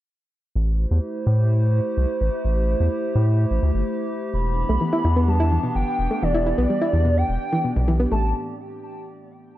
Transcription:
0.56 analog synth bass A1, ambient pad A3 E4 G4 C5
0.91 analog synth bass E2
1.26 analog synth bass A2
1.97 analog synth bass C2
2.21 analog synth bass A1
2.45 analog synth bass A1
2.80 analog synth bass E2
3.15 analog synth bass A2
3.51 analog synth bass A1
3.63 analog synth bass D2
3.74 analog synth bass G1
4.34 analog synth bass E1, ambient pad E3 B3 D4, soft synth lead B5
4.69 analog synth bass B1, synth arpeggio sound A3
4.81 synth arpeggio sound E3
4.93 synth arpeggio sound E4
5.04 analog synth bass E2, synth arpeggio sound E4
5.16 synth arpeggio sound B3
5.28 synth arpeggio sound G3, soft synth lead A5
5.40 synth arpeggio sound E4
5.52 synth arpeggio sound E3
5.63 synth arpeggio sound B2
5.75 analog synth bass G1, soft synth lead G5
5.99 analog synth bass E1
6.11 synth arpeggio sound A3
6.22 analog synth bass E1, synth arpeggio sound E3, soft synth lead D5
6.34 synth arpeggio sound E4
6.46 synth arpeggio sound E4
6.58 analog synth bass B1, synth arpeggio sound B3
6.70 synth arpeggio sound G3
6.82 synth arpeggio sound E4
6.93 analog synth bass E2, synth arpeggio sound E3
7.05 synth arpeggio sound B2
7.17 soft synth lead G5
7.29 analog synth bass E1
7.52 synth arpeggio sound E3
7.64 synth arpeggio sound B2
7.76 analog synth bass B1, synth arpeggio sound B2
7.88 synth arpeggio sound E3
8.00 synth arpeggio sound B3
8.12 analog synth bass A1, synth arpeggio sound A3, soft synth lead A5

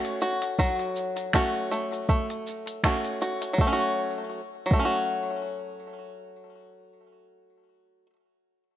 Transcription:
Already playing: five-string banjo F#3 A3 C#4 F#4
0.05 open hi-hat, shaker
0.21 five-string banjo F#4, shaker
0.42 open hi-hat, shaker
0.59 five-string banjo F#3 F#4, kick, shaker
0.79 open hi-hat, shaker
0.96 shaker
1.17 open hi-hat, shaker
1.33 five-string banjo A3 C#4 F#4, finger snap, kick, shaker
1.55 shaker
1.71 five-string banjo A3, shaker
1.93 shaker
2.09 five-string banjo A3, kick, shaker
2.30 open hi-hat, shaker
2.47 shaker
2.67 open hi-hat
2.84 five-string banjo A3 C#4 F#4, finger snap, kick, shaker
3.05 open hi-hat, shaker
3.22 five-string banjo F#4, shaker
3.42 open hi-hat, shaker
3.53 five-string banjo F#3
3.58 five-string banjo A3, kick
3.67 five-string banjo C#4
3.73 five-string banjo F#4
4.66 five-string banjo F#3
4.71 five-string banjo A3, kick
4.79 five-string banjo C#4
4.85 five-string banjo F#4

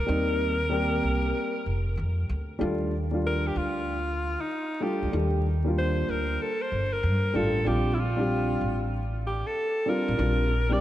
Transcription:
Already playing: alto saxophone A#4
0.06 upright bass D#2, upright piano G3 A#3 C4 D#4
0.69 upright piano G3 A#3 C4 G4
1.03 upright bass C2
1.66 upright bass F1
1.97 upright bass F2
2.29 upright bass D2
2.59 upright bass D#2, upright piano G3 A3 D4 F4
3.11 upright piano G3 A3 D4 F4
3.27 alto saxophone A#4
3.47 alto saxophone G4
3.56 upright bass D2, alto saxophone F4
4.41 alto saxophone D#4
4.80 upright piano G3 A3 D4 F4, alto saxophone G4
5.02 upright bass D2
5.12 upright bass D#2, upright piano G3 A3 D4 G4
5.64 upright piano G3 A#3 D4 F4
5.78 alto saxophone C5
6.09 upright bass D2, alto saxophone A#4
6.42 alto saxophone A4
6.61 alto saxophone C5
6.72 upright bass G1
6.93 alto saxophone A#4
7.03 upright bass G2
7.33 upright bass A1, upright piano G3 A3 D4 F4, alto saxophone A4
7.64 upright bass A#1, upright piano G3 C4 D4 F4, alto saxophone G4
7.94 alto saxophone E4
7.99 alto saxophone F4
8.17 upright piano G3 C4 D4 G4
8.61 upright bass A1
9.27 alto saxophone G4
9.47 alto saxophone A4
9.86 upright piano G3 C4 D4 F4, alto saxophone A#4
10.08 upright bass A1
10.17 upright bass A#1, upright piano G3 C4 D4 F4
10.69 upright piano G3 C4 D4 G4, alto saxophone D5

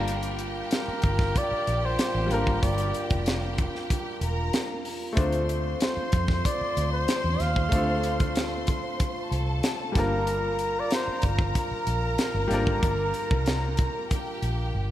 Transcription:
Already playing: fingered electric bass G1, grand piano G3 A#3 D4 F4 A#4, french horn section G3 D4 F4 A#4, string section G4 G5
0.08 closed hi-hat
0.23 closed hi-hat
0.39 closed hi-hat
0.71 flugelhorn A#4, snare, closed hi-hat
0.88 muted fingered electric bass stroke
1.02 fingered electric bass G1, kick, closed hi-hat
1.19 kick, snare
1.36 flugelhorn D5, kick, closed hi-hat
1.51 muted fingered electric bass stroke
1.67 fingered electric bass A#1, closed hi-hat
1.85 flugelhorn C5
1.99 snare, closed hi-hat
2.15 fingered electric bass A1
2.26 grand piano G3 A#3
2.30 fingered electric bass G#1, grand piano D4 F4 A#4, flugelhorn A#4, closed hi-hat
2.47 kick
2.63 fingered electric bass G1, flugelhorn D5, kick, closed hi-hat
2.78 closed hi-hat
2.94 closed hi-hat
3.10 fingered electric bass F1, kick, closed hi-hat
3.26 snare, closed hi-hat
3.58 kick, closed hi-hat
3.75 snare
3.90 kick, closed hi-hat
4.21 fingered electric bass E1, string section A#4 A#5, closed hi-hat
4.53 snare, closed hi-hat
4.85 open hi-hat
5.13 grand piano A3 C4 D4
5.17 fingered electric bass D2, french horn section D3 A3 C4 F4, grand piano F4 C5, string section C5 C6, kick, closed hi-hat
5.32 closed hi-hat
5.49 closed hi-hat
5.80 flugelhorn C5, snare, closed hi-hat
5.97 muted fingered electric bass stroke
6.12 fingered electric bass F2, kick, closed hi-hat
6.28 kick, snare
6.45 flugelhorn D5, kick, closed hi-hat
6.61 muted fingered electric bass stroke
6.77 fingered electric bass D2, closed hi-hat
6.92 flugelhorn C5
7.08 snare, closed hi-hat
7.24 fingered electric bass E2
7.40 fingered electric bass D#2, flugelhorn F5, snare, closed hi-hat
7.56 kick
7.69 fingered electric bass D2, grand piano A3 C4 D4, french horn section D4, kick, closed hi-hat
7.75 grand piano F4 A4
8.03 closed hi-hat
8.20 kick, closed hi-hat
8.36 snare, closed hi-hat
8.67 kick, closed hi-hat
9.00 kick, closed hi-hat
9.31 fingered electric bass C2, string section A4 A5, closed hi-hat
9.63 snare, closed hi-hat
9.92 fingered electric bass G1, grand piano G3 A#3 D4, string section A#4 A#5, kick, closed hi-hat
9.97 french horn section G3 A#4, grand piano F4 A#4, flugelhorn A#4, snare
10.27 closed hi-hat
10.59 closed hi-hat
10.80 flugelhorn D5
10.91 flugelhorn C5, snare, closed hi-hat
11.07 muted fingered electric bass stroke
11.22 fingered electric bass G1, kick, closed hi-hat
11.27 flugelhorn A#4
11.39 kick
11.55 kick, closed hi-hat
11.71 muted fingered electric bass stroke
11.87 fingered electric bass A#1, closed hi-hat
12.18 snare, closed hi-hat
12.34 fingered electric bass G1
12.48 fingered electric bass G#1, grand piano G3 A#3 D4, snare, closed hi-hat
12.52 grand piano F4 A#4
12.67 kick
12.83 fingered electric bass G1, kick, closed hi-hat
13.14 closed hi-hat
13.31 fingered electric bass C2, kick
13.46 snare, closed hi-hat
13.77 kick, closed hi-hat
14.10 string section G4 G5, kick, closed hi-hat
14.42 fingered electric bass A#1, closed hi-hat
14.74 fingered electric bass G1

